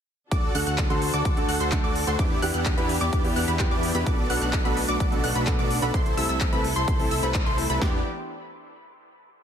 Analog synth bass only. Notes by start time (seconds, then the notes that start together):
0.32 D2
0.55 D2
0.67 D2
0.90 D2
1.14 D2
1.25 D2
1.49 D2
1.60 D2
1.84 D2
2.07 D2
2.19 E2
2.43 E2
2.54 E2
2.78 E2
3.01 E2
3.13 E2
3.36 E2
3.48 E2
3.71 E2
3.95 E2
4.07 B1
4.30 B1
4.42 B1
4.65 B1
4.89 B1
5.00 B1
5.24 B1
5.35 B1
5.59 B1
5.82 B1
5.94 C2
6.17 C2
6.29 C2
6.53 C2
6.76 C2
6.88 C2
7.11 C2
7.23 C2
7.46 C2
7.70 C2
7.82 E2